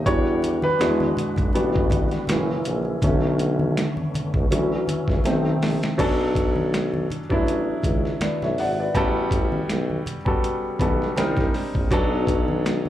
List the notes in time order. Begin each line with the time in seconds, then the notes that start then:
0.05 E2 E3 G3 D4 F#4 C#5, kick, closed hi-hat
0.42 closed hi-hat, muted conga
0.62 B4, high conga
0.79 E2 G#3 D4 F#4, snare, closed hi-hat, muted conga
1.00 high conga
1.17 B1, closed hi-hat, low conga
1.36 B1, kick, closed hi-hat, low conga
1.53 A1 D3 G3 B3 D4 F#4, closed hi-hat, muted conga
1.76 kick
1.90 kick, closed hi-hat, muted conga, high conga
2.11 snare, closed hi-hat
2.27 F#1 A#2 C#3 E3 F#3 C#4 E4, snare, closed hi-hat, muted conga, high conga
2.65 A#1, closed hi-hat
3.02 B1 D3 A3 B3 C#4, kick, closed hi-hat, muted conga
3.39 closed hi-hat, muted conga
3.59 high conga
3.77 snare, closed hi-hat
3.97 high conga
4.14 C#2, closed hi-hat, low conga
4.34 C#2, kick, low conga
4.50 D2 D3 E3 F#3 C#4 E4, closed hi-hat, muted conga
4.87 C#2, closed hi-hat, high conga
5.08 C#2, kick, snare
5.24 B1 B2 C3 D#3 A3 C4 D#4, snare, closed hi-hat, muted conga, high conga
5.62 A#1, snare, open hi-hat
5.83 snare, closed hi-hat
5.98 B1 F#3 B3 C#4 D4 A4, kick, closed hi-hat, crash
6.35 kick, closed hi-hat
6.56 high conga
6.74 snare, closed hi-hat
6.93 high conga
7.10 A1, closed hi-hat, low conga
7.30 A1 F#3 B3 C#4 D4 E4, kick, low conga
7.47 closed hi-hat, muted conga
7.83 C#2, kick, closed hi-hat, high conga
8.05 snare
8.21 B4 D5, snare, closed hi-hat, muted conga, high conga
8.42 B1 C#5 E5, snare, low conga
8.58 G#1 D5 F#5, snare, open hi-hat
8.80 B4 D5
8.95 A1 G3 B3 C#4 F#4 A4, kick, closed hi-hat, muted conga
9.31 A1, kick, closed hi-hat, muted conga
9.52 high conga
9.70 B1, snare, closed hi-hat
9.90 high conga
10.06 closed hi-hat, muted conga, low conga
10.25 G3 B3 C#4 F#4 A4, kick, low conga
10.44 closed hi-hat
10.79 B1 G3 B3 C#4 F#4 A4, kick, closed hi-hat, high conga
11.02 snare
11.16 C2 G3 C4 D4 D#4 A#4, snare, closed hi-hat, high conga
11.37 C2, kick, snare, low conga
11.54 snare, open hi-hat
11.75 A#1, kick
11.90 B1 F#3 B3 C#4 D4 A4, kick, closed hi-hat, muted conga
12.27 kick, closed hi-hat, muted conga
12.48 high conga
12.66 snare, closed hi-hat
12.85 high conga